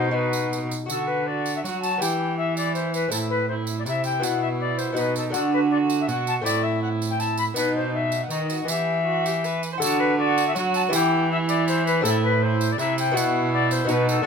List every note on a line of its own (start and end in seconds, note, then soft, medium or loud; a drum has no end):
0.00 0.66 B2 medium
0.00 0.68 B2 medium
0.00 0.13 D#4 medium
0.00 0.11 F#4 medium
0.00 0.15 C5 loud
0.11 0.85 D#4 medium
0.11 0.69 D#4 medium
0.11 0.85 F#4 medium
0.11 0.58 B4 medium
0.33 tambourine medium
0.53 tambourine medium
0.71 tambourine medium
0.86 1.59 D3 medium
0.86 1.65 D3 medium
0.86 1.96 F#4 soft
0.86 1.08 A4 medium
0.86 tambourine medium
0.91 1.25 F#4 medium
1.07 1.28 B4 medium
1.26 1.63 F#4 medium
1.26 1.54 D5 medium
1.46 tambourine medium
1.55 1.59 E5 medium
1.64 2.03 F#3 medium
1.64 1.97 F#3 soft
1.64 2.04 F#4 medium
1.64 1.81 F#5 medium
1.64 tambourine soft
1.81 2.00 A5 medium
1.81 tambourine soft
1.98 3.12 E3 medium
1.98 3.08 E3 soft
1.98 3.07 B3 soft
1.98 3.08 E4 soft
1.98 3.08 G4 soft
1.98 2.36 G5 medium
1.98 tambourine medium
2.02 2.39 E4 medium
2.37 3.11 E4 medium
2.37 2.55 E5 medium
2.56 2.73 D5 medium
2.56 tambourine medium
2.74 2.92 C5 medium
2.74 tambourine soft
2.93 3.10 B4 medium
2.93 tambourine soft
3.08 3.82 A2 medium
3.08 4.18 C4 soft
3.08 4.19 E4 soft
3.08 3.17 A4 medium
3.08 4.19 A4 soft
3.08 tambourine medium
3.13 3.87 A2 medium
3.13 3.49 E4 medium
3.29 3.47 B4 medium
3.47 3.86 E4 medium
3.47 3.54 C5 medium
3.67 tambourine soft
3.78 3.82 D5 medium
3.86 4.24 C3 medium
3.86 4.19 C3 medium
3.86 4.23 E4 medium
3.86 4.04 E5 medium
3.86 tambourine soft
4.04 4.25 G5 medium
4.04 tambourine soft
4.19 4.96 B2 medium
4.19 4.93 B2 medium
4.19 4.91 B3 medium
4.19 4.93 E4 soft
4.19 4.93 F#4 medium
4.23 4.99 E4 medium
4.23 4.41 F#5 medium
4.23 tambourine medium
4.42 4.48 E5 medium
4.60 4.79 D5 loud
4.77 4.98 C5 medium
4.77 tambourine soft
4.93 5.30 B2 soft
4.93 5.30 B3 medium
4.93 5.31 D#4 medium
4.93 5.32 F#4 soft
4.93 tambourine soft
4.97 5.35 B2 medium
4.97 5.36 D#4 medium
4.97 5.15 B4 medium
5.16 5.22 A4 medium
5.16 tambourine medium
5.30 6.10 D3 medium
5.30 6.04 D3 medium
5.30 6.04 A3 medium
5.30 6.40 D4 medium
5.30 6.41 F#4 medium
5.30 5.52 A4 loud
5.30 tambourine medium
5.34 5.71 F#4 medium
5.53 5.59 B4 medium
5.70 6.08 F#4 medium
5.70 5.76 D5 medium
5.90 tambourine medium
6.00 6.08 E5 medium
6.08 6.41 B2 medium
6.08 6.45 B2 medium
6.08 6.44 F#4 medium
6.08 6.26 F#5 loud
6.08 tambourine soft
6.27 6.33 A5 loud
6.27 tambourine soft
6.41 7.52 A2 medium
6.41 7.51 A3 medium
6.41 7.52 C4 medium
6.41 7.52 E4 medium
6.41 6.64 D5 loud
6.46 7.55 A2 medium
6.46 7.18 E4 medium
6.46 tambourine medium
6.63 6.81 E5 medium
6.81 6.88 F#5 loud
7.02 tambourine medium
7.10 7.21 G5 medium
7.19 7.55 E4 medium
7.19 7.38 A5 loud
7.19 tambourine soft
7.37 7.44 B5 loud
7.37 tambourine medium
7.54 8.27 B2 medium
7.54 8.64 B3 soft
7.54 8.65 D#4 medium
7.54 8.27 D#4 medium
7.54 7.74 B4 loud
7.54 tambourine medium
7.75 7.93 C5 medium
7.94 8.24 E5 medium
8.12 tambourine soft
8.23 8.30 F#5 medium
8.30 8.67 D#3 medium
8.30 8.64 D#3 medium
8.30 8.39 D#4 medium
8.30 8.58 D#5 medium
8.30 tambourine soft
8.50 8.68 F#4 medium
8.50 tambourine soft
8.60 8.68 D#5 medium
8.65 9.58 E3 soft
8.65 9.60 E3 medium
8.65 9.76 B3 soft
8.65 9.77 E4 soft
8.65 9.61 E5 medium
8.65 tambourine medium
8.70 9.02 G4 medium
9.05 9.27 F#4 medium
9.26 9.45 G4 medium
9.26 tambourine medium
9.44 9.72 B4 medium
9.44 tambourine soft
9.63 tambourine soft
9.73 9.76 C5 medium
9.78 10.52 D3 medium
9.78 10.57 D3 medium
9.78 10.88 F#4 medium
9.78 10.89 A4 medium
9.78 10.01 A4 loud
9.82 10.16 F#4 medium
9.82 tambourine medium
9.99 10.17 B4 loud
10.18 10.55 F#4 medium
10.18 10.45 D5 loud
10.38 tambourine medium
10.47 10.54 E5 loud
10.55 10.89 F#3 medium
10.55 10.92 F#3 medium
10.55 10.94 F#4 medium
10.55 10.73 F#5 loud
10.55 tambourine medium
10.74 10.81 A5 loud
10.74 tambourine medium
10.89 12.00 E3 medium
10.89 12.06 E3 medium
10.89 11.99 B3 medium
10.89 11.99 E4 medium
10.89 12.00 G4 medium
10.93 11.29 E4 medium
10.93 11.30 G5 loud
10.93 tambourine loud
11.30 12.02 E4 medium
11.30 11.37 E5 loud
11.48 11.66 D5 loud
11.48 tambourine medium
11.67 11.85 C5 loud
11.67 tambourine medium
11.86 12.03 B4 loud
11.86 tambourine medium
12.01 12.78 A2 medium
12.01 12.74 A2 medium
12.01 13.10 C4 medium
12.01 13.11 E4 medium
12.01 13.11 A4 medium
12.01 12.22 A4 loud
12.05 12.41 E4 medium
12.05 tambourine medium
12.23 12.43 B4 loud
12.42 12.79 E4 medium
12.42 12.73 C5 loud
12.61 tambourine medium
12.71 12.78 D5 loud
12.78 13.11 C3 medium
12.78 13.17 C3 medium
12.78 13.15 E4 medium
12.78 12.97 E5 loud
12.78 tambourine medium
12.98 13.17 G5 loud
12.98 tambourine medium
13.11 13.85 B2 medium
13.11 13.83 B3 medium
13.11 13.85 E4 medium
13.11 13.91 E4 medium
13.11 13.86 F#4 medium
13.15 13.88 B2 medium
13.15 13.52 F#5 loud
13.15 tambourine medium
13.52 13.72 D5 loud
13.71 13.88 C5 loud
13.71 tambourine medium
13.84 14.22 B3 medium
13.84 14.23 D#4 medium
13.84 14.23 F#4 medium
13.89 14.22 B2 medium
13.89 14.25 B2 medium
13.89 14.25 D#4 medium
13.89 14.07 B4 loud
13.89 tambourine medium
14.09 14.26 A4 loud
14.09 tambourine medium
14.22 14.26 A3 medium
14.22 14.26 D4 medium